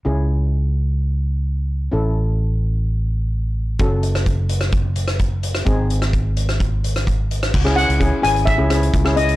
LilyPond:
<<
  \new Staff \with { instrumentName = "Steel pan" } { \time 4/4 \key cis \minor \tempo 4 = 128 r1 | r1 | r1 | r1 |
r8 fis''4 gis''8 e''4. dis''8 | }
  \new Staff \with { instrumentName = "Steel pan" } { \time 4/4 \key cis \minor <cis' e' gis'>1 | <cis' e' a'>1 | <cis' fis' a'>1 | <bis dis' gis'>1 |
r16 <cis' e' gis'>16 <cis' e' gis'>16 r16 <cis' e' gis'>16 r16 <cis' e' gis'>8 r16 <cis' e' gis'>16 <cis' e' gis'>8 r16 <cis' e' gis'>16 <cis' e' gis'>8 | }
  \new Staff \with { instrumentName = "Fingered electric bass" } { \clef bass \time 4/4 \key cis \minor cis,1 | a,,1 | fis,,1 | gis,,1 |
cis,8. cis,8 r16 gis,,8. cis,8. cis,4 | }
  \new DrumStaff \with { instrumentName = "Drums" } \drummode { \time 4/4 r4 r4 r4 r4 | r4 r4 r4 r4 | <hh bd>8 hh16 <hh ss>16 <hh bd>8 hh16 <hh ss>16 <hh bd>8 hh16 <hh ss>16 <hh bd>8 hh16 <hh ss>16 | <hh bd>8 hh16 <hh ss>16 <hh bd>8 hh16 <hh ss>16 <hh bd>8 hh16 <hh ss>16 <hh bd>8 hh16 <hh ss>16 |
<cymc bd>16 ss16 hh16 hh16 <hh bd>8 hh16 hh16 <hh bd>8 <hh ss>16 hh16 <hh bd>16 ss16 hh16 hh16 | }
>>